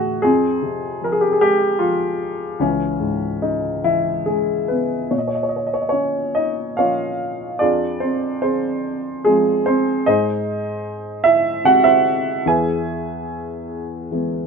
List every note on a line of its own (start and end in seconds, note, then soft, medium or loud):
0.00 0.26 A2 soft
0.00 0.26 E3 soft
0.00 0.21 F#4 medium
0.00 0.22 G#4 medium
0.22 2.56 F2 medium
0.22 1.37 C4 medium
0.22 1.08 G#4 medium
0.62 2.16 C3 soft
1.01 1.78 F3 soft
1.01 1.14 A#4 medium
1.12 1.22 G#4 medium
1.21 1.31 G4 medium
1.32 1.41 G#4 medium
1.41 2.57 G#3 soft
1.41 1.81 G4 medium
1.79 2.58 F3 soft
1.79 2.62 F4 medium
2.59 5.07 C#2 medium
2.59 3.81 E3 medium
2.59 3.45 C#4 medium
3.00 4.64 G#2 soft
3.42 4.24 C#3 soft
3.42 3.85 D#4 medium
3.83 5.07 E3 soft
3.83 4.65 E4 medium
4.25 5.08 C#3 soft
4.25 4.67 G#3 medium
4.25 4.70 G#4 medium
4.68 5.09 B3 soft
4.68 5.08 B4 medium
5.11 7.57 A#2 soft
5.11 5.19 C#5 medium
5.18 5.27 D#5 medium
5.28 5.36 C#5 medium
5.35 5.43 D#5 medium
5.43 5.52 C#5 medium
5.49 5.59 D#5 medium
5.56 5.66 C#5 soft
5.67 5.75 D#5 medium
5.74 5.83 C#5 medium
5.82 5.91 D#5 medium
5.89 6.34 C#4 medium
5.89 6.37 C#5 medium
6.35 6.76 D#4 medium
6.35 6.79 D#5 medium
6.77 7.59 F3 soft
6.77 7.59 A#3 soft
6.77 7.59 C#4 soft
6.77 7.57 F4 medium
6.77 7.57 C#5 medium
6.77 7.56 F5 medium
7.59 10.02 F2 medium
7.59 8.00 D4 medium
7.59 7.99 F4 medium
7.59 7.99 G#4 medium
7.59 8.03 D5 medium
8.00 8.41 C4 medium
8.00 8.40 C5 medium
8.42 9.21 C4 medium
8.42 9.21 G#4 soft
8.42 9.27 C5 medium
9.25 10.04 F3 soft
9.25 9.63 G#3 medium
9.25 9.66 C4 soft
9.25 9.67 G#4 medium
9.66 10.04 C4 medium
9.66 10.03 C5 medium
10.06 12.42 G#2 medium
10.06 11.22 D#4 medium
10.06 11.22 G#4 medium
10.06 11.22 C5 medium
10.06 11.29 D#5 loud
11.24 11.63 E4 medium
11.24 11.66 E5 loud
11.64 12.43 C3 soft
11.64 12.43 G#3 soft
11.64 12.43 C4 soft
11.64 11.85 F#4 medium
11.64 11.86 F#5 loud
11.84 12.42 E4 medium
11.84 12.41 C5 medium
11.84 12.47 E5 loud
12.46 14.47 E2 medium
12.46 14.08 G#4 medium
12.46 14.08 B4 medium
12.46 14.09 E5 medium
12.46 14.08 G#5 medium
14.11 14.47 E3 soft
14.11 14.47 G#3 soft
14.11 14.47 B3 soft